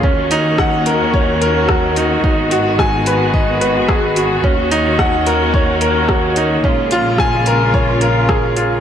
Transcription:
<<
  \new Staff \with { instrumentName = "Grand piano" } { \time 4/4 \key ees \minor \tempo 4 = 109 des'8 ees'8 ges''8 bes'8 des''8 bes'8 ges'8 ees'8 | ees'8 ges'8 aes''8 ces''8 ees''8 ces''8 aes'8 ges'8 | des'8 ees'8 ges''8 bes'8 des''8 bes'8 ges'8 ees'8 | des'8 f'8 aes''8 bes'8 des''8 bes'8 aes'8 f'8 | }
  \new Staff \with { instrumentName = "String section" } { \time 4/4 \key ees \minor << { <ees ges'>1~ | <ees ges'>1~ | <ees ges'>1 | <des f'>1 | } \\ { <bes des'>1 | <aes ces'>1 | <bes des'>1 | aes1 | } >> }
  \new Staff \with { instrumentName = "Double bass section" } { \clef bass \time 4/4 \key ees \minor ees,1 | aes,,1 | ees,1 | bes,,1 | }
  \new DrumStaff \with { instrumentName = "Drums" } \drummode { \time 4/4 bd8 hh8 <bd ss>8 hh8 bd8 hh8 <bd ss>8 hh8 | bd8 hh8 <bd ss>8 hh8 bd8 hh8 <bd ss>8 hh8 | bd8 hh8 <bd ss>8 hh8 bd8 hh8 <bd ss>8 hh8 | bd8 hh8 <bd ss>8 hh8 bd8 hh8 <bd ss>8 hh8 | }
>>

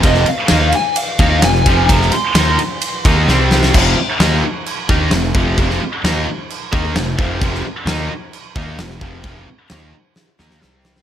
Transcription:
<<
  \new Staff \with { instrumentName = "Lead electric guitar" } { \time 4/4 \key f \minor \tempo 4 = 130 ees''8 f''4 aes''8 f''4 aes''4 | bes''8 c'''4 r2 r8 | r1 | r1 |
r1 | r1 | }
  \new Staff \with { instrumentName = "Distorted electric guitar" } { \clef bass \time 4/4 \key f \minor <f, c f>8 r8 <ees bes ees'>8 r4 <ees bes ees'>8 <f, c>8 <f, c f>8 | <f, c f>8 r8 <ees bes ees'>8 r4 <ees bes ees'>8 <c g c'>4 | <f, c f>8 r8 <ees bes ees'>8 r4 <ees bes ees'>8 <f, c>8 <f, c f>8 | <f, c f>8 r8 <ees bes ees'>8 r4 <ees bes ees'>8 <f, c>8 <f, c f>8 |
<f, c f>8 r8 <ees bes ees'>8 r4 <ees bes ees'>8 <f, c>8 <f, c f>8 | <f, c f>8 r8 <ees bes ees'>8 r4 <ees bes ees'>8 <c g c'>4 | }
  \new Staff \with { instrumentName = "Picked electric bass" } { \clef bass \time 4/4 \key f \minor f,,8 r8 ees,8 r4 ees,8 f,,8 f,,8 | f,,8 r8 ees,8 r4 ees,8 c,4 | f,,8 r8 ees,8 r4 ees,8 f,,8 f,,8 | f,,8 r8 ees,8 r4 ees,8 f,,8 f,,8 |
f,,8 r8 ees,8 r4 ees,8 f,,8 f,,8 | f,,8 r8 ees,8 r4 ees,8 c,4 | }
  \new DrumStaff \with { instrumentName = "Drums" } \drummode { \time 4/4 <bd cymr>16 sn16 cymr8 <cymr sn>8 cymr8 cymr8 <bd cymr>8 <cymr sn>16 sn16 <bd cymr>8 | <bd cymr>16 sn16 cymr8 <cymr sn>8 cymr8 cymr8 <bd cymr>8 sn8 sn16 sn16 | <cymc bd>4 <cymc sn>4 cymc8 bd8 <cymc sn>16 sn16 bd8 | <cymc bd>16 sn8. <cymc sn>4 cymc8 bd8 <cymc sn>8 bd8 |
<cymc bd>16 sn8. <cymc sn>4 cymc8 bd8 <cymc sn>16 sn16 bd8 | <cymc bd>4 <cymc sn>4 sn8 sn16 sn16 sn8 sn16 sn16 | }
>>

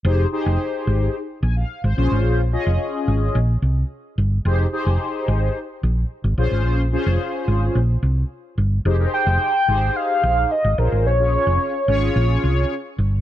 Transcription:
<<
  \new Staff \with { instrumentName = "Soft synth lead" } { \time 4/4 \key f \minor \tempo 4 = 109 r1 | r1 | r1 | r1 |
r8 g''4. f''4 ees''8 bes'8 | des''2. r4 | }
  \new Staff \with { instrumentName = "Analog polysynth" } { \time 4/4 \key f \minor << { r2 r8 aes''16 f''8 c''8 r16 | r1 | r1 | r1 |
r1 | r1 | } \\ { <ees' g' aes' c''>8 <ees' g' aes' c''>4. r4. <des' f' aes' c''>8~ | <des' f' aes' c''>16 r16 <des' f' aes' ees''>4. r2 | <ees' g' aes' c''>8 <ees' g' aes' c''>4. r4. <des' f' aes' c''>8~ | <des' f' aes' c''>16 r16 <des' f' aes' c''>4. r2 |
<ees' g' aes' c''>16 <ees' g' aes' bes' c''>4 r16 <ees' g' aes' c''>4. r8 <des' f' aes' c''>8 | r16 <des' f' aes' des''>4 r16 <des' f' aes' des''>4. r4 | } >> }
  \new Staff \with { instrumentName = "Fingered electric bass" } { \clef bass \time 4/4 \key f \minor f,,8 r16 f,,16 r8 aes,,8 r8 bes,,8 r16 aes,,16 bes,,16 aes,,16 | bes,,8. f,,16 r8 aes,,8 bes,,8 c,8 r8 g,,8 | f,,8 r16 f,,16 r8 aes,,8 r8 bes,,8 r16 aes,,16 bes,,16 aes,,16 | bes,,8. f,,16 r8 aes,,8 bes,,8 c,8 r8 g,,8 |
f,,8 r16 f,,16 r8 aes,,8 r8 bes,,8 r16 aes,,16 bes,,16 aes,,16 | bes,,8. f,,16 r8 aes,,8 bes,,8 c,8 r8 g,,8 | }
>>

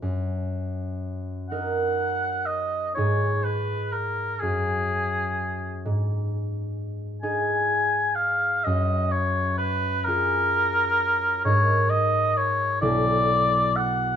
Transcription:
<<
  \new Staff \with { instrumentName = "Oboe" } { \time 6/8 \key fis \major \tempo 4. = 43 r4. fis''4 dis''8 | cis''8 b'8 ais'8 gis'4. | r4. gis''4 eis''8 | dis''8 cis''8 b'8 ais'4. |
cis''8 dis''8 cis''8 d''4 fis''8 | }
  \new Staff \with { instrumentName = "Harp" } { \time 6/8 \key fis \major <fis, bes bes'>4. <dis' ais'>4. | <gis, dis' gis'>4. <fis, fis' gis'>4. | gis,4. <dis' gis'>4. | fis,4. <eis' gis'>4. |
<gis, dis' ais'>4. <b,, e' a'>4. | }
>>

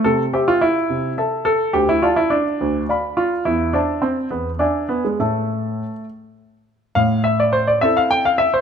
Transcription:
\new Staff \with { instrumentName = "Grand piano" } { \time 6/8 \key a \minor \tempo 4. = 70 << { c8 <c'' e'' g''>4 c8 <a' e'' a''>4 | d,8 <d'' f'' a''>4 d,8 <d'' f'' b''>4 | e,8 <c'' e'' a''>4 e,8 <d'' e'' gis''>4 | <a, e'' a''>4. r4. |
a,4. <c' e' a'>4. | } \\ { a'8 g'16 f'16 e'4. a'8 | g'16 e'16 f'16 e'16 d'4. f'8 | e'8 d'8 c'8 b8 d'8 b16 gis16 | a4. r4. |
f''8 e''16 d''16 c''16 d''16 e''16 f''16 g''16 f''16 e''16 c''16 | } >> }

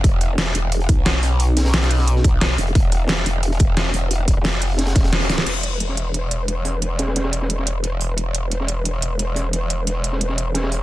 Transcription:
<<
  \new Staff \with { instrumentName = "Wobble bass" } { \clef bass \time 4/4 \key c \major \tempo 4 = 177 e,,4. e,,4 b,,4.~ | b,,2~ b,,8 b,,4 e,,8 | e,,4. e,,4 e,,4 e,,8~ | e,,4 f,,4. e,,4. |
e,,1~ | e,,1~ | e,,1~ | e,,1 | }
  \new DrumStaff \with { instrumentName = "Drums" } \drummode { \time 4/4 <hh bd>8 hh8 <hh sn>16 sn16 hh8 hh16 hh16 <hh bd>8 <hh sn>8 <hh hho sn>8 | hh8 <hh sn>16 <hh sn>16 <hh sn>16 <hh sn>16 <hh hho>16 sn16 hh16 sn16 <hh bd>8 <hh sn>8 <hh hho>16 hh16 | <hh bd>8 hh8 <hh sn>16 sn16 hh8 hh16 hh16 <hh bd>8 <hh sn>8 <hh hho sn>8 | hh8 <hh bd>8 <hh sn>16 hh16 <hh hho>8 <hh sn>16 <hh sn>16 <hh bd sn>16 <hh sn>16 <hh sn>16 <hh sn>16 <hh hho sn>16 <hh sn>16 |
<cymc hh>8 hh8 hh16 sn16 hh8 hh16 hh16 hh8 hh8 <hh hho sn>8 | hh8 <hh sn>16 <hh sn>16 <hh sn>16 <hh sn>16 <hh hho>16 sn16 hh16 sn16 hh8 hh16 hh16 <hh hho>16 hh16 | hh8 hh8 hh16 sn16 hh8 hh16 hh16 hh8 hh8 <hh hho sn>8 | hh8 hh8 hh16 hh16 <hh hho>16 sn16 hh16 sn16 hh8 <hh sn>16 <hh sn>16 <hh hho>8 | }
>>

